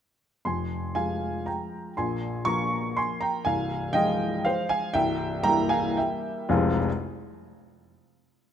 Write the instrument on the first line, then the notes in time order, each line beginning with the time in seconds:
upright piano
0.45 F1 F2 G#5 C6
0.95 F3 G#3 F4 F5 G#5
1.46 G5 A#5
1.97 A#1 A#2 G#5 C6
2.45 F3 A#3 F4 A#5 C#6
2.97 G#5 C6
3.21 G5 A#5
3.45 C1 C2 F5 G#5
3.93 F3 G#3 F4 D#5 G5
4.45 C5 F5
4.69 F5 G#5
4.94 C1 C2 E5 G5
5.44 G3 A#3 E4 G5 A#5
5.69 F5 G#5
5.97 E5 G5
6.49 F1 C2 F3 G#3 C4 F4 G#5